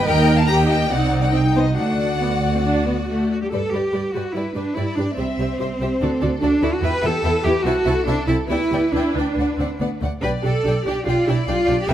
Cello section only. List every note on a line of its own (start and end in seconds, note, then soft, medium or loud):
0.07 0.49 A#4 medium
0.49 0.91 G4 medium
0.91 1.77 D#4 medium
1.78 3.28 F#4 medium
3.31 3.41 F#4 medium
3.42 3.52 G4 medium
3.51 3.72 A4 medium
3.72 4.14 G4 medium
4.13 4.35 F#4 medium
4.34 4.55 E4 medium
4.55 4.76 D4 medium
4.76 4.97 E4 medium
4.97 5.17 D4 medium
5.17 6.39 C4 medium
6.42 6.62 D4 medium
6.63 6.73 E4 medium
6.73 6.83 F#4 medium
6.83 7.03 B4 loud
7.03 7.44 A4 loud
7.44 7.65 G4 medium
7.64 8.06 F#4 medium
8.07 8.28 D4 medium
8.27 8.35 E4 medium
8.49 8.92 E4 medium
8.93 10.00 D4 medium
10.22 10.30 B4 medium
10.43 10.85 A4 medium
10.86 11.06 G4 medium
11.07 11.27 F4 medium
11.27 11.48 E4 medium
11.48 11.78 F4 medium
11.80 11.90 G4 medium
11.89 11.94 B4 loud